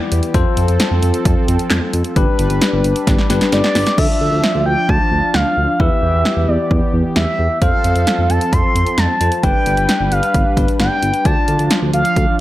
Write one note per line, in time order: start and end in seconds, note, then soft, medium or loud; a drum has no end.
0.00 0.33 E3 medium
0.00 0.33 B3 medium
0.00 0.34 E4 medium
0.00 0.33 G4 medium
0.00 0.34 G4 medium
0.00 0.34 D5 medium
0.12 0.21 E2 loud
0.12 closed hi-hat medium
0.23 closed hi-hat medium
0.34 0.44 F2 loud
0.34 2.14 F3 medium
0.34 2.14 C4 medium
0.34 2.13 F4 medium
0.34 2.14 A4 medium
0.34 2.13 A4 medium
0.34 2.13 C5 medium
0.34 kick loud
0.34 closed hi-hat medium
0.57 0.67 F2 loud
0.57 closed hi-hat medium
0.68 0.78 F2 loud
0.68 closed hi-hat medium
0.80 snare loud
0.80 closed hi-hat medium
0.91 1.01 F2 loud
1.03 1.12 F2 loud
1.03 closed hi-hat medium
1.14 closed hi-hat medium
1.25 1.35 F2 loud
1.25 kick loud
1.25 closed hi-hat medium
1.48 1.57 F2 loud
1.48 closed hi-hat medium
1.59 closed hi-hat medium
1.70 1.80 F2 loud
1.70 snare loud
1.70 clap loud
1.70 closed hi-hat medium
1.93 2.03 F2 loud
1.93 closed hi-hat medium
2.04 closed hi-hat medium
2.16 2.26 G1 loud
2.16 3.96 G3 medium
2.16 3.96 D4 medium
2.16 3.28 D4 medium
2.16 3.28 G4 medium
2.16 3.96 B4 medium
2.16 3.28 B4 medium
2.16 kick loud
2.16 closed hi-hat medium
2.39 2.48 G1 loud
2.39 closed hi-hat medium
2.50 2.60 G1 loud
2.50 closed hi-hat medium
2.61 snare loud
2.61 closed hi-hat medium
2.73 2.83 G1 loud
2.84 2.94 G1 loud
2.84 closed hi-hat medium
2.96 closed hi-hat medium
3.07 3.17 G1 loud
3.07 kick loud
3.07 snare medium
3.07 closed hi-hat medium
3.19 snare medium
3.30 3.39 G1 loud
3.30 3.97 D4 medium
3.30 3.98 G4 medium
3.30 3.98 B4 medium
3.30 snare medium
3.30 closed hi-hat medium
3.41 snare medium
3.41 closed hi-hat medium
3.52 3.62 G1 loud
3.52 3.99 D5 medium
3.52 snare medium
3.52 closed hi-hat medium
3.64 snare medium
3.75 3.85 G1 loud
3.75 snare loud
3.75 open hi-hat medium
3.86 snare loud
3.86 closed hi-hat medium
3.98 4.08 D2 loud
3.98 5.78 F3 medium
3.98 5.78 D4 medium
3.98 5.76 D4 medium
3.98 5.76 F4 medium
3.98 5.78 F4 medium
3.98 5.76 D5 medium
3.98 4.65 E5 loud
3.98 kick loud
3.98 crash medium
4.21 4.30 D2 loud
4.32 4.42 D2 loud
4.44 snare loud
4.55 4.64 D2 medium
4.66 4.76 D2 loud
4.66 4.90 G5 loud
4.89 4.99 D2 loud
4.89 5.35 A5 loud
4.89 kick loud
5.12 5.21 D2 medium
5.34 5.44 D2 loud
5.34 5.81 F5 loud
5.34 snare loud
5.57 5.67 D2 loud
5.80 5.89 E2 loud
5.80 7.60 E3 medium
5.80 7.60 B3 medium
5.80 7.58 E4 medium
5.80 7.60 G4 medium
5.80 7.58 G4 medium
5.80 7.58 B4 medium
5.80 6.50 E5 loud
5.80 kick loud
6.02 6.12 E2 loud
6.14 6.23 E2 loud
6.25 snare loud
6.37 6.46 E2 loud
6.48 6.57 E2 loud
6.48 6.93 D5 medium
6.71 6.80 E2 loud
6.71 kick loud
6.93 7.03 E2 loud
7.16 7.26 E2 loud
7.16 7.59 E5 medium
7.16 snare loud
7.39 7.48 E2 loud
7.62 7.71 F2 loud
7.62 9.42 F3 medium
7.62 9.42 C4 medium
7.62 9.18 F4 medium
7.62 9.42 A4 medium
7.62 9.18 A4 medium
7.62 9.18 C5 medium
7.62 8.31 F5 loud
7.62 kick loud
7.62 closed hi-hat medium
7.84 7.94 F2 loud
7.84 closed hi-hat medium
7.96 8.05 F2 loud
7.96 closed hi-hat medium
8.07 snare loud
8.07 closed hi-hat medium
8.18 8.28 F2 medium
8.30 8.39 F2 loud
8.30 8.54 A5 loud
8.30 closed hi-hat medium
8.41 closed hi-hat medium
8.52 8.62 F2 loud
8.52 9.00 C6 loud
8.52 kick loud
8.52 closed hi-hat medium
8.75 8.85 F2 loud
8.75 closed hi-hat medium
8.87 closed hi-hat medium
8.98 9.07 F2 loud
8.98 9.43 A5 loud
8.98 snare loud
8.98 closed hi-hat medium
9.21 9.30 F2 medium
9.21 9.43 F4 soft
9.21 9.43 A4 soft
9.21 9.43 C5 medium
9.21 closed hi-hat medium
9.32 closed hi-hat medium
9.43 9.53 G1 loud
9.43 11.24 G3 medium
9.43 10.55 D4 medium
9.43 11.24 D4 medium
9.43 10.55 G4 medium
9.43 10.55 B4 medium
9.43 11.24 B4 medium
9.43 10.13 G5 loud
9.43 kick loud
9.43 closed hi-hat medium
9.66 9.76 G1 loud
9.66 closed hi-hat medium
9.77 9.87 G1 medium
9.77 closed hi-hat medium
9.89 snare loud
9.89 closed hi-hat medium
10.00 10.10 G1 loud
10.12 10.21 G1 loud
10.12 10.57 F5 medium
10.12 closed hi-hat medium
10.23 closed hi-hat medium
10.34 10.44 G1 loud
10.34 kick loud
10.34 closed hi-hat medium
10.57 10.67 G1 loud
10.57 11.24 D4 medium
10.57 11.25 G4 soft
10.57 11.25 B4 medium
10.57 kick loud
10.57 closed hi-hat medium
10.68 closed hi-hat medium
10.80 10.89 G1 loud
10.80 11.27 G5 medium
10.80 snare loud
10.80 closed hi-hat medium
11.03 11.12 G1 loud
11.03 closed hi-hat medium
11.14 closed hi-hat medium
11.25 11.35 D2 loud
11.25 12.40 F3 medium
11.25 12.40 D4 medium
11.25 12.40 F4 medium
11.25 12.40 D5 medium
11.25 11.71 A5 loud
11.25 kick loud
11.25 closed hi-hat medium
11.48 11.58 D2 loud
11.48 closed hi-hat medium
11.59 11.69 D2 loud
11.59 closed hi-hat medium
11.71 snare loud
11.71 closed hi-hat medium
11.82 11.92 D2 loud
11.93 12.03 D2 loud
11.93 12.36 F5 loud
11.93 closed hi-hat medium
12.05 closed hi-hat medium
12.16 12.26 D2 loud
12.16 kick loud
12.16 closed hi-hat medium